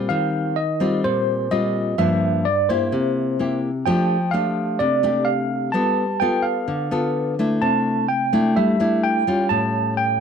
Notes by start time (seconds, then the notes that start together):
Already playing: G3 C4 F4
0.09 D#3 F5
0.56 D#5
0.80 G3 C4 F4
1.04 A#2 C5
1.51 G3 C4 F4 D#5
1.98 G2 F3 A#3 D4 E5
2.45 D5
2.69 A#3 E4 G4 C5
2.92 C3
3.39 A#3 E4 G4
3.86 F3 A3 D4 G4 G5
4.31 A3 D4 G4 F5
4.79 C3 D5
5.03 A3 D4 G4
5.25 F5
5.72 G3 B3 F4 A4 A5
6.20 B3 F4 A4 G5
6.42 F5
6.68 D3
6.91 B3 F4 A4
7.39 A3 D4 E4
7.62 C3 A5
8.08 G5
8.33 A3 D4 E4
8.56 G3 E5
8.80 A3 D4 E4
9.04 G5
9.27 G3 C#4 F4
9.49 A2 A5
9.97 G5